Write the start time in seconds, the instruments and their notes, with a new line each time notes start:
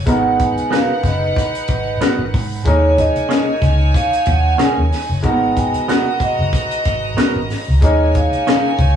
0.06 fingered electric bass G#1, grand piano G#3 B3 D#4 F#4 A#4, string section D#4 B4 F#5, vibraphone F#5, kick, closed hi-hat
0.39 vibraphone G#5, kick, closed hi-hat
0.57 muted fingered electric bass stroke, closed hi-hat
0.71 clean electric guitar B3 F#4 A#4, vibraphone F5, snare, closed hi-hat
1.04 fingered electric bass F#1, vibraphone D#5, kick, snare, closed hi-hat
1.36 kick, closed hi-hat
1.55 closed hi-hat
1.67 fingered electric bass G#1, kick, closed hi-hat
2.01 clean electric guitar B3 F#4 A#4, muted fingered electric bass stroke, snare, closed hi-hat
2.18 fingered electric bass G#1
2.34 fingered electric bass G#2, kick, open hi-hat
2.65 fingered electric bass D#2, grand piano G#3 A#3 C#4 D#4 A#4, string section D#4 C#5 G#5, vibraphone C#5, kick, closed hi-hat
2.98 vibraphone D#5, kick, closed hi-hat
3.16 muted fingered electric bass stroke, closed hi-hat
3.29 clean electric guitar C#4 G#4 A#4, snare, closed hi-hat
3.62 fingered electric bass C#2, kick, snare, closed hi-hat
3.94 vibraphone F5, kick, closed hi-hat
4.13 closed hi-hat
4.26 fingered electric bass D#2, kick, closed hi-hat
4.30 vibraphone F#5
4.58 clean electric guitar C#4 G#4 A#4, muted fingered electric bass stroke, snare, closed hi-hat
4.62 vibraphone G#5
4.77 fingered electric bass D#2
4.92 snare, open hi-hat
5.09 fingered electric bass F#1
5.22 fingered electric bass G#1, grand piano G#3 A#3 D#4 F#4 A#4, string section F#4 D#5 A#5, vibraphone F#5, kick, closed hi-hat
5.29 grand piano B3
5.51 vibraphone G5
5.57 vibraphone G#5, kick, closed hi-hat
5.74 muted fingered electric bass stroke, closed hi-hat
5.88 clean electric guitar B3 F#4 A#4, vibraphone F#5, snare, closed hi-hat
6.20 vibraphone D#5, muted fingered electric bass stroke, kick, closed hi-hat
6.39 fingered electric bass F#1
6.53 kick, closed hi-hat
6.71 closed hi-hat
6.85 fingered electric bass G#1, kick, closed hi-hat
7.17 clean electric guitar B3 F#4 A#4, muted fingered electric bass stroke, snare, closed hi-hat
7.35 fingered electric bass G#1
7.50 snare, open hi-hat
7.68 fingered electric bass C#2
7.81 fingered electric bass D#2, grand piano G#3 A#3 C#4 D#4 A#4, string section D#4 C#5 G#5, vibraphone D#5, kick, closed hi-hat
8.15 vibraphone F5, kick, closed hi-hat
8.32 muted fingered electric bass stroke, closed hi-hat
8.47 clean electric guitar C#4 G#4 A#4, snare, closed hi-hat
8.79 fingered electric bass C#2, kick, closed hi-hat